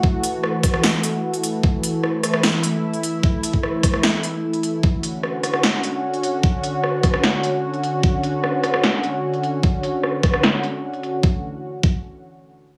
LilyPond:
<<
  \new Staff \with { instrumentName = "Analog synth pad" } { \time 4/4 \key fis \minor \tempo 4 = 150 << { fis'1 | e'1~ | e'1 | fis'1~ |
fis'1~ | fis'1~ | fis'1 | r1 | } \\ { <e a>1~ | <e a>1~ | <e a>1 | <d cis'>1~ |
<d cis'>1~ | <d cis'>1~ | <d cis'>1 | r1 | } >> }
  \new DrumStaff \with { instrumentName = "Drums" } \drummode { \time 4/4 bd8 hh8 ss8 <hh bd ss>16 ss16 sn8 hh8 r16 hh16 hh8 | bd8 hh8 ss8 <hh ss>16 ss16 sn8 hh8 r16 hh16 hh8 | bd8 hh16 bd16 ss8 <hh bd ss>16 ss16 sn8 hh8 r16 hh16 hh8 | bd8 hh8 ss8 <hh ss>16 ss16 sn8 hh8 r16 hh16 hh8 |
bd8 hh8 ss8 <hh bd ss>16 ss16 sn8 hh8 r16 hh16 hh8 | bd8 hh8 ss8 <hh ss>16 ss16 sn8 hh8 r16 hh16 hh8 | bd8 hh8 ss8 <hh bd ss>16 ss16 sn8 hh8 r16 hh16 hh8 | bd4 r8 bd8 r4 r4 | }
>>